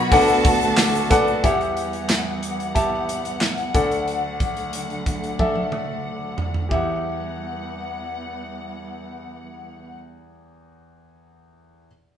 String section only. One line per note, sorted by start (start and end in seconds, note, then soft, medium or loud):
0.00 0.10 D#3 medium
0.00 0.10 F#3 medium
0.00 1.41 B3 medium
0.00 1.41 F#4 medium
0.11 1.42 D3 medium
0.11 1.42 A3 medium
1.44 3.72 E3 medium
1.44 3.72 G3 medium
1.44 3.72 B3 medium
1.44 6.68 F#5 medium
3.74 6.69 D3 medium
3.74 6.69 F#3 medium
3.74 6.69 A3 medium
6.71 9.93 E3 medium
6.71 9.93 G3 soft
6.71 9.93 B3 soft
6.71 9.93 F#5 medium